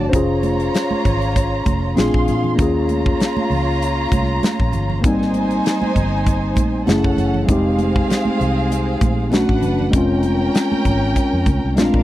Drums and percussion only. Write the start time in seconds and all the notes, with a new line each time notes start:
0.13 kick, closed hi-hat
0.43 closed hi-hat, muted conga, high conga
0.60 closed hi-hat
0.74 snare, closed hi-hat, muted conga
0.91 high conga
1.05 kick, closed hi-hat, muted conga, low conga
1.22 closed hi-hat
1.36 kick, closed hi-hat, muted conga
1.66 kick, closed hi-hat, high conga
1.97 snare, closed hi-hat, muted conga, high conga
2.14 kick
2.28 closed hi-hat, low conga
2.44 low conga
2.58 kick, closed hi-hat, muted conga
2.88 closed hi-hat, high conga
3.06 kick
3.20 snare, closed hi-hat
3.37 high conga
3.51 open hi-hat, muted conga, low conga
3.82 closed hi-hat
4.12 kick, closed hi-hat, muted conga, high conga
4.43 snare, closed hi-hat, high conga
4.60 kick
4.72 closed hi-hat, muted conga, low conga
4.90 low conga
5.04 kick, closed hi-hat, muted conga
5.22 snare
5.34 closed hi-hat, high conga
5.51 closed hi-hat
5.65 snare, closed hi-hat, muted conga
5.82 high conga
5.96 kick, closed hi-hat, muted conga, low conga
6.26 kick, closed hi-hat, muted conga
6.56 kick, closed hi-hat, muted conga, high conga
6.87 snare, closed hi-hat, muted conga, high conga
7.04 kick
7.17 closed hi-hat, muted conga, low conga
7.34 low conga
7.48 kick, closed hi-hat, muted conga
7.79 closed hi-hat, muted conga, high conga
7.96 kick
8.10 snare, closed hi-hat, muted conga
8.25 high conga
8.40 closed hi-hat, muted conga, low conga
8.71 closed hi-hat, muted conga
9.01 kick, closed hi-hat, muted conga, high conga
9.32 snare, closed hi-hat, muted conga, high conga
9.49 kick
9.62 closed hi-hat, muted conga, low conga
9.79 low conga
9.93 kick, closed hi-hat, muted conga
10.23 closed hi-hat, muted conga, high conga
10.55 snare, closed hi-hat
10.72 high conga
10.85 kick, closed hi-hat, muted conga, low conga
11.16 kick, closed hi-hat
11.46 kick, closed hi-hat, high conga
11.77 snare, closed hi-hat, high conga
11.94 kick